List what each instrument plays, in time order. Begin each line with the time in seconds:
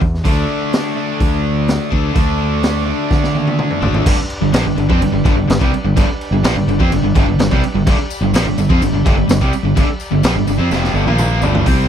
0.01 fingered electric bass E2, kick
0.14 snare
0.24 fingered electric bass D2, distorted electric guitar D3 A3 D4, kick, open hi-hat
0.73 snare, open hi-hat
0.95 overdriven electric guitar D3 A3 D4
1.20 fingered electric bass D2, kick, open hi-hat
1.68 snare, open hi-hat
1.90 fingered electric bass D2, distorted electric guitar D3 A3 D4, kick
2.14 fingered electric bass D2, distorted electric guitar D3 A3 D4, kick, open hi-hat
2.63 snare, open hi-hat
2.85 overdriven electric guitar D3 A3 D4
3.11 fingered electric bass D3, kick, snare
3.24 snare
3.35 high tom
3.47 high tom
3.59 mid tom
3.71 mid tom
3.81 fingered electric bass G#1, distorted electric guitar D3 A3 D4, floor tom
3.94 floor tom
4.05 fingered electric bass G1, distorted electric guitar G2 D3, tonewheel organ D4 G4 B4 D5, kick, crash
4.18 muted overdriven electric guitar stroke, muted distorted electric guitar stroke
4.30 crash
4.41 fingered electric bass G1, distorted electric guitar G2 D3
4.52 fingered electric bass A#1, distorted electric guitar A#2 F3, snare, crash
4.64 fingered electric bass G1, distorted electric guitar G2 D3
4.76 fingered electric bass G1, distorted electric guitar G2 D3, crash
4.89 fingered electric bass F2, distorted electric guitar F3 C4, kick
5.00 fingered electric bass G1, distorted electric guitar G2 D3, crash
5.12 fingered electric bass G1, distorted electric guitar G2 D3
5.24 fingered electric bass G1, distorted electric guitar G2 D3, kick, crash
5.36 fingered electric bass G1, distorted electric guitar G2 D3
5.48 fingered electric bass G1, distorted electric guitar G2 D3, snare, crash
5.59 fingered electric bass C2, distorted electric guitar C3 G3, kick
5.72 muted distorted electric guitar stroke, muted fingered electric bass stroke, muted overdriven electric guitar stroke, crash
5.85 fingered electric bass G1, distorted electric guitar G2 D3
5.96 fingered electric bass G1, distorted electric guitar G2 D3, kick, crash
6.09 muted distorted electric guitar stroke, muted overdriven electric guitar stroke
6.21 crash
6.31 fingered electric bass G1, distorted electric guitar G2 D3
6.43 fingered electric bass A#1, distorted electric guitar A#2 F3, snare, crash
6.56 fingered electric bass G1, distorted electric guitar G2 D3
6.67 fingered electric bass G1, distorted electric guitar G2 D3, crash
6.79 fingered electric bass F2, distorted electric guitar F3 C4, kick
6.90 fingered electric bass G1, distorted electric guitar G2 D3, crash
7.02 fingered electric bass G1, distorted electric guitar G2 D3
7.15 fingered electric bass G1, distorted electric guitar G2 D3, kick, crash
7.27 fingered electric bass G1, distorted electric guitar G2 D3
7.39 fingered electric bass G1, distorted electric guitar G2 D3, snare, crash
7.51 fingered electric bass C2, distorted electric guitar C3 G3, kick
7.63 muted distorted electric guitar stroke, muted fingered electric bass stroke, muted overdriven electric guitar stroke, crash
7.75 fingered electric bass G1, distorted electric guitar G2 D3
7.86 fingered electric bass G1, distorted electric guitar G2 D3, tonewheel organ G4 D5 B5, kick, crash
7.99 muted overdriven electric guitar stroke, muted distorted electric guitar stroke
8.10 tambourine, crash
8.21 fingered electric bass G1, distorted electric guitar G2 D3
8.33 fingered electric bass A#1, distorted electric guitar A#2 F3, snare, tambourine, crash
8.45 fingered electric bass G1, distorted electric guitar G2 D3
8.57 fingered electric bass G1, distorted electric guitar G2 D3, tambourine, crash
8.69 fingered electric bass F2, distorted electric guitar F3 C4, kick
8.81 fingered electric bass G1, distorted electric guitar G2 D3, tambourine, crash
8.92 fingered electric bass G1, distorted electric guitar G2 D3
9.05 fingered electric bass G1, distorted electric guitar G2 D3, kick, tambourine, crash
9.16 fingered electric bass G1, distorted electric guitar G2 D3
9.28 fingered electric bass G1, distorted electric guitar G2 D3, snare, tambourine, crash
9.41 fingered electric bass C2, distorted electric guitar C3 G3, kick
9.52 muted distorted electric guitar stroke, muted fingered electric bass stroke, muted overdriven electric guitar stroke, tambourine, crash
9.63 fingered electric bass G1, distorted electric guitar G2 D3
9.75 fingered electric bass G1, distorted electric guitar G2 D3, kick, tambourine, crash
9.87 muted fingered electric bass stroke, muted distorted electric guitar stroke, muted overdriven electric guitar stroke
10.00 tambourine, crash
10.11 fingered electric bass G1, distorted electric guitar G2 D3
10.23 fingered electric bass A#1, distorted electric guitar A#2 F3, snare, tambourine, crash
10.36 fingered electric bass G1, distorted electric guitar G2 D3
10.47 fingered electric bass G1, distorted electric guitar G2 D3, tambourine, crash
10.58 fingered electric bass F2, distorted electric guitar F3 C4
10.70 fingered electric bass F1, distorted electric guitar F2 C3 F3, snare, tambourine
10.84 snare
10.94 fingered electric bass G1, distorted electric guitar G2 D3, tambourine
11.06 fingered electric bass A#1, distorted electric guitar A#2 F3 A#3, high tom
11.18 mid tom, tambourine
11.34 tonewheel organ A3 B3
11.40 fingered electric bass G1, distorted electric guitar G2 D3 G3, tonewheel organ C4 D4, floor tom, tambourine
11.45 tonewheel organ E4 F4
11.51 tonewheel organ G4 A4, floor tom
11.57 tonewheel organ B4 C5
11.62 fingered electric bass C2, distorted electric guitar C3 G3, tonewheel organ C4 E4 G4 C5 D5
11.66 distorted electric guitar C4, kick, open hi-hat